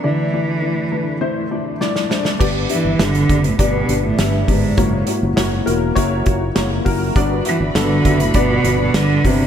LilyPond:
<<
  \new Staff \with { instrumentName = "String section" } { \time 4/4 \key g \major \tempo 4 = 101 r1 | r1 | r1 | <fis' b' d'' b''>1 | }
  \new Staff \with { instrumentName = "Grand piano" } { \time 4/4 \key g \major <a d' e' d''>8 <a d' e' d''>8 <a d' e' d''>8 <a d' e' b'>8 <a d' e' c''>8 <a d' e' d''>8 <a d' e' d''>8 <a d' e' c''>8 | <b d' g' d''>8 <b d' g' e''>8 <b d' g' b'>8 <b d' g' d''>8 <b d' g' d''>8 <b d' g' d''>8 <b d' g' e''>8 <b d' g' d''>8 | <ais e' fis' cis''>8 <ais e' fis' cis''>8 <ais e' fis' cis''>8 <ais e' fis' ais'>8 <ais e' fis' cis''>8 <ais e' fis' cis''>8 <ais e' fis' cis''>8 <ais e' fis' ais'>8 | <b d' fis' d''>8 <b d' fis' e''>8 <b d' fis' a'>8 <b d' fis' e''>8 <b d' fis' d''>8 <b d' fis' d''>8 <b d' fis' d''>8 <b d' fis' d''>8 | }
  \new Staff \with { instrumentName = "Grand piano" } { \clef bass \time 4/4 \key g \major <d, d>1 | g,4. r2 r8 | r1 | g,4. r2 r8 | }
  \new Staff \with { instrumentName = "Cello" } { \clef bass \time 4/4 \key g \major e2. r4 | r8 e8 d8. a,16 b,8. a,16 g,8 aes,8~ | aes,8 r2. r8 | r8 e8 d8. a,16 b,8. b,16 d8 c8 | }
  \new Staff \with { instrumentName = "Fingered electric bass" } { \clef bass \time 4/4 \key g \major r1 | g,,8 r16 g,,16 g,,8 fis,,8 g,,8 g,,8 g,,8 g,,8 | fis,,8 r16 fis,,16 fis,,8 e,,8 fis,,8 fis,,8 fis,,8 fis,,8 | g,,8 r16 g,,16 g,,8 fis,,8 g,,8 g,,8 g,,8 g,,8 | }
  \new DrumStaff \with { instrumentName = "Drums" } \drummode { \time 4/4 r4 r4 r4 sn16 sn16 sn16 sn16 | <cymc bd>8 hh8 <hh sn>16 hh16 <hh bd>16 hh16 <hh bd>8 hh8 <hh sn>8 <hho bd>8 | <hh bd>8 hh8 <hh sn>8 hh8 <hh bd>8 <hh bd>8 <hh sn>8 <hho bd>8 | <hh bd>8 hh8 <hh sn>8 <hh bd>16 hh16 <hh bd>8 hh8 <hh sn>8 <hho bd>8 | }
>>